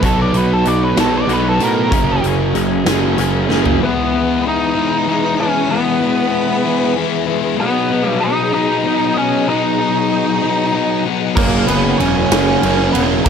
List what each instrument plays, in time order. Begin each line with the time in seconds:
0.02 picked electric bass B1, distorted electric guitar B2 F#3 B3 D#4, clean electric guitar B2 F#3 B3 D#4 F#4, lead electric guitar A4, kick, closed hi-hat
0.21 lead electric guitar D5
0.33 picked electric bass B1, clean electric guitar B3 D#4 F#4, closed hi-hat
0.37 lead electric guitar B4
0.53 lead electric guitar A4
0.65 picked electric bass B1, clean electric guitar F#3 B3 D#4 F#4, lead electric guitar D5, closed hi-hat
0.84 lead electric guitar B4
0.96 picked electric bass B1, distorted electric guitar B2 F#3 B3 D#4, clean electric guitar D#4 F#4, lead electric guitar A4, snare, closed hi-hat
1.00 clean electric guitar B3
1.18 lead electric guitar D5
1.27 picked electric bass B1, distorted electric guitar B2 F#3 B3 D#4, clean electric guitar F#3 B3 D#4 F#4, closed hi-hat
1.33 lead electric guitar B4
1.49 lead electric guitar A4
1.59 picked electric bass A2, distorted electric guitar B2 F#3 B3 D#4, clean electric guitar B3 D#4 F#4, closed hi-hat
1.63 lead electric guitar A#4
1.91 picked electric bass F#1, distorted electric guitar F#2 C#3 F#3 A#3 C#4, clean electric guitar F#3 A#3 C#4 G#4, kick, closed hi-hat
2.22 picked electric bass F#1, clean electric guitar C#4 G#4, closed hi-hat
2.26 clean electric guitar A#3
2.54 picked electric bass F#1, clean electric guitar F#3 A#3 C#4 G#4, closed hi-hat
2.85 picked electric bass F#1, distorted electric guitar F#2 C#3 F#3 A#3 C#4, clean electric guitar A#3 C#4 G#4, snare, closed hi-hat
3.16 picked electric bass F#1, distorted electric guitar F#2 C#3 F#3 A#3 C#4, clean electric guitar F#3 A#3 C#4, closed hi-hat
3.21 clean electric guitar G#4
3.49 picked electric bass F#1, distorted electric guitar F#2 C#3 F#3 A#3 C#4, clean electric guitar A#3 C#4 G#4, snare
3.66 floor tom
3.80 distorted electric guitar E3 G#3 B3 E4, lead electric guitar B3, string machine G#4 B4 F#5 B5
3.85 lead electric guitar B4
4.12 distorted electric guitar B3 E4
4.16 distorted electric guitar G#3
4.48 lead electric guitar D#4 D#5
4.75 distorted electric guitar E3 G#3 B3 E4
5.06 distorted electric guitar E3 G#3 B3 E4
5.38 distorted electric guitar G#3 B3 E4, lead electric guitar C#4 C#5
5.69 distorted electric guitar E3 G#3 B3 E4, lead electric guitar B3 B4, string machine G#5
6.00 distorted electric guitar G#3 B3 E4
6.63 distorted electric guitar E3 G#3 B3 E4
6.95 distorted electric guitar E3 G#3 B3 E4
7.27 distorted electric guitar G#3 B3 E4
7.58 distorted electric guitar B2 F#3 B3 D#4, lead electric guitar B3 B4, string machine D#5 F#5
7.90 distorted electric guitar F#3 B3 D#4
8.09 lead electric guitar A4
8.23 lead electric guitar D#4 D#5
8.53 distorted electric guitar B2 F#3 B3 D#4, lead electric guitar D#4 D#5
8.84 distorted electric guitar B2 F#3 B3 D#4
9.15 distorted electric guitar F#3 B3 D#4, lead electric guitar C#4 C#5
9.47 distorted electric guitar B2 F#3 B3 D#4, lead electric guitar D#4 D#5, string machine C#6
9.78 distorted electric guitar F#3 B3 D#4
10.42 distorted electric guitar B2 F#3 B3 D#4
10.73 distorted electric guitar B2 F#3 B3 D#4
11.05 distorted electric guitar F#3 B3 D#4
11.36 picked electric bass F#1, distorted electric guitar F#2 C#3 F#3 A#3 C#4, lead electric guitar A#3 A#4, string machine C#5 A#5 C#6, kick, crash
11.67 picked electric bass F#1, distorted electric guitar A#3 C#4, lead electric guitar B3 B4, ride
11.71 distorted electric guitar F#3
11.98 picked electric bass E1, overdriven electric guitar C#3 F#3 A#3 C#4, lead electric guitar C#4 C#5, ride
12.30 picked electric bass F#1, distorted electric guitar F#2 C#3 F#3 A#3 C#4, snare, ride
12.62 picked electric bass F#1, distorted electric guitar C#3 F#3 A#3 C#4, ride
12.92 picked electric bass E1, distorted electric guitar A#3 C#4, lead electric guitar B3 B4, ride
12.97 distorted electric guitar F#3
13.24 picked electric bass F#1, distorted electric guitar F#2, overdriven electric guitar C#3, lead electric guitar A#3 A#4, string machine E5, kick, ride